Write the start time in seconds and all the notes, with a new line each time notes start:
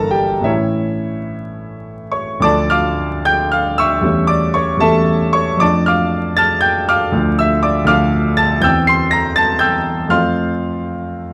Already playing: G1 G2 E3 A#3 D4 A4 A#4 A5 A#5
0.11 G4 G5
0.41 A2 E3 A3 C#4 C#5 E5
0.46 E4
2.12 C#5 C#6
2.40 D2 F3 A3 D4 D5 A5 D6
2.70 F5 D6 F6
3.25 G5 G6
3.52 F5 F6
3.78 E5 C#6 E6
4.01 E2 G3 A3 C#4
4.27 D5 D6
4.54 C#5 C#6
4.77 E2 G3 A3 C#4 A4 E5 A5
5.33 C#5 C#6
5.57 F2 F3 A3 D6
5.61 D4 D5 A5
5.86 F5 D6 F6
6.37 A5 F6 A6
6.61 G5 G6
6.89 F5 D6 F6
7.12 D2 F3 A3 D4
7.39 E5 E6
7.63 D5 D6
7.84 D2 F3 A3 D4 D6 F6
7.89 F5
8.37 A5 A6
8.60 E2 E3 C4 G5 E6 G6
8.87 C6 C7
9.11 A#5 A#6
9.36 A5 A6
9.59 G5 E6 G6
10.07 F2 A3 C4 F4 F5 C6 F6